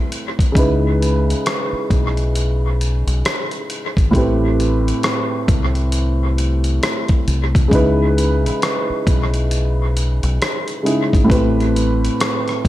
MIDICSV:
0, 0, Header, 1, 5, 480
1, 0, Start_track
1, 0, Tempo, 895522
1, 294, Time_signature, 4, 2, 24, 8
1, 6797, End_track
2, 0, Start_track
2, 0, Title_t, "Upright piano"
2, 0, Program_c, 0, 0
2, 0, Control_c, 0, 64, 127
2, 0, Note_on_c, 0, 45, 74
2, 0, Note_on_c, 0, 57, 59
2, 0, Note_on_c, 0, 60, 62
2, 0, Note_on_c, 0, 67, 57
2, 0, Note_on_c, 0, 71, 80
2, 263, Note_off_c, 0, 45, 0
2, 268, Note_off_c, 0, 57, 0
2, 271, Note_off_c, 0, 60, 0
2, 277, Note_off_c, 0, 67, 0
2, 279, Note_on_c, 0, 49, 78
2, 281, Note_off_c, 0, 71, 0
2, 288, Note_on_c, 0, 56, 60
2, 298, Note_on_c, 0, 63, 54
2, 301, Control_c, 0, 64, 0
2, 307, Note_on_c, 0, 64, 61
2, 316, Note_on_c, 0, 71, 76
2, 390, Control_c, 0, 64, 127
2, 2185, Note_off_c, 0, 49, 0
2, 2190, Note_off_c, 0, 56, 0
2, 2195, Note_off_c, 0, 63, 0
2, 2199, Note_off_c, 0, 64, 0
2, 2202, Note_on_c, 0, 45, 72
2, 2203, Note_off_c, 0, 71, 0
2, 2214, Note_on_c, 0, 57, 59
2, 2221, Control_c, 0, 64, 0
2, 2222, Note_on_c, 0, 60, 65
2, 2230, Note_on_c, 0, 67, 68
2, 2240, Note_on_c, 0, 71, 68
2, 2305, Control_c, 0, 64, 127
2, 4107, Note_off_c, 0, 45, 0
2, 4113, Note_off_c, 0, 57, 0
2, 4116, Note_on_c, 0, 49, 78
2, 4117, Note_off_c, 0, 60, 0
2, 4121, Note_off_c, 0, 67, 0
2, 4124, Note_on_c, 0, 56, 68
2, 4126, Note_off_c, 0, 71, 0
2, 4135, Note_on_c, 0, 63, 63
2, 4141, Control_c, 0, 64, 0
2, 4145, Note_on_c, 0, 64, 68
2, 4153, Note_on_c, 0, 71, 90
2, 4221, Control_c, 0, 64, 127
2, 5784, Note_off_c, 0, 49, 0
2, 5788, Note_off_c, 0, 56, 0
2, 5793, Note_off_c, 0, 63, 0
2, 5798, Note_off_c, 0, 64, 0
2, 5802, Note_off_c, 0, 71, 0
2, 5803, Note_on_c, 0, 49, 55
2, 5805, Note_on_c, 0, 56, 45
2, 5810, Note_on_c, 0, 63, 46
2, 5816, Note_on_c, 0, 64, 50
2, 5821, Note_on_c, 0, 68, 64
2, 6025, Note_on_c, 0, 45, 70
2, 6034, Note_on_c, 0, 57, 65
2, 6042, Note_on_c, 0, 60, 62
2, 6049, Note_off_c, 0, 49, 0
2, 6050, Note_off_c, 0, 56, 0
2, 6052, Note_off_c, 0, 63, 0
2, 6052, Note_on_c, 0, 67, 55
2, 6055, Note_off_c, 0, 64, 0
2, 6057, Note_off_c, 0, 68, 0
2, 6060, Control_c, 0, 64, 0
2, 6060, Note_on_c, 0, 71, 80
2, 6141, Control_c, 0, 64, 127
2, 6797, Note_off_c, 0, 45, 0
2, 6797, Note_off_c, 0, 57, 0
2, 6797, Note_off_c, 0, 60, 0
2, 6797, Note_off_c, 0, 67, 0
2, 6797, Note_off_c, 0, 71, 0
2, 6797, End_track
3, 0, Start_track
3, 0, Title_t, "Fingered electric bass"
3, 0, Program_c, 1, 33
3, 296, Note_on_c, 1, 37, 106
3, 711, Note_off_c, 1, 37, 0
3, 1023, Note_on_c, 1, 35, 83
3, 1625, Note_off_c, 1, 35, 0
3, 1645, Note_on_c, 1, 35, 79
3, 1724, Note_off_c, 1, 35, 0
3, 2129, Note_on_c, 1, 32, 90
3, 2206, Note_off_c, 1, 32, 0
3, 2218, Note_on_c, 1, 33, 108
3, 2632, Note_off_c, 1, 33, 0
3, 2941, Note_on_c, 1, 36, 94
3, 3636, Note_off_c, 1, 36, 0
3, 3900, Note_on_c, 1, 36, 88
3, 4105, Note_off_c, 1, 36, 0
3, 4137, Note_on_c, 1, 37, 113
3, 4552, Note_off_c, 1, 37, 0
3, 4862, Note_on_c, 1, 35, 85
3, 5464, Note_off_c, 1, 35, 0
3, 5484, Note_on_c, 1, 35, 84
3, 5563, Note_off_c, 1, 35, 0
3, 5969, Note_on_c, 1, 32, 90
3, 6046, Note_off_c, 1, 32, 0
3, 6060, Note_on_c, 1, 33, 99
3, 6473, Note_off_c, 1, 33, 0
3, 6797, End_track
4, 0, Start_track
4, 0, Title_t, "Muted fingered electric bass strokes"
4, 926, Note_on_c, 9, 29, 43
4, 979, Note_off_c, 9, 29, 0
4, 4769, Note_on_c, 9, 29, 41
4, 4823, Note_off_c, 9, 29, 0
4, 6797, End_track
5, 0, Start_track
5, 0, Title_t, "Drums"
5, 65, Note_on_c, 9, 42, 71
5, 118, Note_off_c, 9, 42, 0
5, 209, Note_on_c, 9, 36, 73
5, 217, Note_on_c, 9, 42, 50
5, 262, Note_off_c, 9, 36, 0
5, 270, Note_off_c, 9, 42, 0
5, 296, Note_on_c, 9, 36, 111
5, 303, Note_on_c, 9, 42, 92
5, 350, Note_off_c, 9, 36, 0
5, 357, Note_off_c, 9, 42, 0
5, 549, Note_on_c, 9, 42, 72
5, 603, Note_off_c, 9, 42, 0
5, 698, Note_on_c, 9, 42, 51
5, 752, Note_off_c, 9, 42, 0
5, 783, Note_on_c, 9, 42, 76
5, 787, Note_on_c, 9, 37, 104
5, 836, Note_off_c, 9, 42, 0
5, 841, Note_off_c, 9, 37, 0
5, 1021, Note_on_c, 9, 36, 88
5, 1023, Note_on_c, 9, 42, 55
5, 1074, Note_off_c, 9, 36, 0
5, 1076, Note_off_c, 9, 42, 0
5, 1165, Note_on_c, 9, 42, 41
5, 1218, Note_off_c, 9, 42, 0
5, 1262, Note_on_c, 9, 42, 69
5, 1316, Note_off_c, 9, 42, 0
5, 1507, Note_on_c, 9, 42, 68
5, 1560, Note_off_c, 9, 42, 0
5, 1649, Note_on_c, 9, 42, 48
5, 1702, Note_off_c, 9, 42, 0
5, 1744, Note_on_c, 9, 42, 75
5, 1747, Note_on_c, 9, 37, 112
5, 1797, Note_off_c, 9, 42, 0
5, 1801, Note_off_c, 9, 37, 0
5, 1883, Note_on_c, 9, 42, 35
5, 1937, Note_off_c, 9, 42, 0
5, 1982, Note_on_c, 9, 42, 65
5, 2036, Note_off_c, 9, 42, 0
5, 2127, Note_on_c, 9, 36, 82
5, 2135, Note_on_c, 9, 42, 47
5, 2180, Note_off_c, 9, 36, 0
5, 2188, Note_off_c, 9, 42, 0
5, 2215, Note_on_c, 9, 36, 115
5, 2223, Note_on_c, 9, 42, 78
5, 2269, Note_off_c, 9, 36, 0
5, 2277, Note_off_c, 9, 42, 0
5, 2465, Note_on_c, 9, 42, 64
5, 2519, Note_off_c, 9, 42, 0
5, 2616, Note_on_c, 9, 42, 53
5, 2670, Note_off_c, 9, 42, 0
5, 2698, Note_on_c, 9, 42, 70
5, 2703, Note_on_c, 9, 37, 111
5, 2752, Note_off_c, 9, 42, 0
5, 2756, Note_off_c, 9, 37, 0
5, 2939, Note_on_c, 9, 36, 98
5, 2940, Note_on_c, 9, 42, 63
5, 2992, Note_off_c, 9, 36, 0
5, 2993, Note_off_c, 9, 42, 0
5, 3083, Note_on_c, 9, 42, 40
5, 3137, Note_off_c, 9, 42, 0
5, 3174, Note_on_c, 9, 42, 72
5, 3227, Note_off_c, 9, 42, 0
5, 3421, Note_on_c, 9, 42, 60
5, 3475, Note_off_c, 9, 42, 0
5, 3559, Note_on_c, 9, 42, 45
5, 3613, Note_off_c, 9, 42, 0
5, 3660, Note_on_c, 9, 42, 76
5, 3663, Note_on_c, 9, 37, 100
5, 3713, Note_off_c, 9, 42, 0
5, 3717, Note_off_c, 9, 37, 0
5, 3797, Note_on_c, 9, 42, 33
5, 3802, Note_on_c, 9, 36, 85
5, 3851, Note_off_c, 9, 42, 0
5, 3855, Note_off_c, 9, 36, 0
5, 3900, Note_on_c, 9, 42, 70
5, 3954, Note_off_c, 9, 42, 0
5, 4047, Note_on_c, 9, 36, 88
5, 4052, Note_on_c, 9, 42, 53
5, 4100, Note_off_c, 9, 36, 0
5, 4105, Note_off_c, 9, 42, 0
5, 4135, Note_on_c, 9, 36, 107
5, 4142, Note_on_c, 9, 42, 85
5, 4188, Note_off_c, 9, 36, 0
5, 4196, Note_off_c, 9, 42, 0
5, 4385, Note_on_c, 9, 42, 71
5, 4439, Note_off_c, 9, 42, 0
5, 4536, Note_on_c, 9, 42, 53
5, 4590, Note_off_c, 9, 42, 0
5, 4622, Note_on_c, 9, 42, 81
5, 4627, Note_on_c, 9, 37, 103
5, 4675, Note_off_c, 9, 42, 0
5, 4680, Note_off_c, 9, 37, 0
5, 4860, Note_on_c, 9, 36, 94
5, 4862, Note_on_c, 9, 42, 64
5, 4914, Note_off_c, 9, 36, 0
5, 4915, Note_off_c, 9, 42, 0
5, 5004, Note_on_c, 9, 42, 44
5, 5058, Note_off_c, 9, 42, 0
5, 5098, Note_on_c, 9, 42, 77
5, 5152, Note_off_c, 9, 42, 0
5, 5342, Note_on_c, 9, 42, 67
5, 5396, Note_off_c, 9, 42, 0
5, 5484, Note_on_c, 9, 42, 48
5, 5538, Note_off_c, 9, 42, 0
5, 5583, Note_on_c, 9, 42, 70
5, 5587, Note_on_c, 9, 37, 98
5, 5637, Note_off_c, 9, 42, 0
5, 5641, Note_off_c, 9, 37, 0
5, 5722, Note_on_c, 9, 42, 37
5, 5776, Note_off_c, 9, 42, 0
5, 5823, Note_on_c, 9, 42, 68
5, 5877, Note_off_c, 9, 42, 0
5, 5967, Note_on_c, 9, 36, 81
5, 5974, Note_on_c, 9, 42, 50
5, 6021, Note_off_c, 9, 36, 0
5, 6027, Note_off_c, 9, 42, 0
5, 6056, Note_on_c, 9, 36, 104
5, 6064, Note_on_c, 9, 42, 87
5, 6109, Note_off_c, 9, 36, 0
5, 6118, Note_off_c, 9, 42, 0
5, 6220, Note_on_c, 9, 42, 30
5, 6274, Note_off_c, 9, 42, 0
5, 6306, Note_on_c, 9, 42, 65
5, 6359, Note_off_c, 9, 42, 0
5, 6457, Note_on_c, 9, 42, 50
5, 6510, Note_off_c, 9, 42, 0
5, 6542, Note_on_c, 9, 42, 82
5, 6546, Note_on_c, 9, 37, 119
5, 6595, Note_off_c, 9, 42, 0
5, 6600, Note_off_c, 9, 37, 0
5, 6687, Note_on_c, 9, 42, 37
5, 6695, Note_on_c, 9, 37, 33
5, 6741, Note_off_c, 9, 42, 0
5, 6748, Note_off_c, 9, 37, 0
5, 6779, Note_on_c, 9, 36, 90
5, 6797, Note_off_c, 9, 36, 0
5, 6797, End_track
0, 0, End_of_file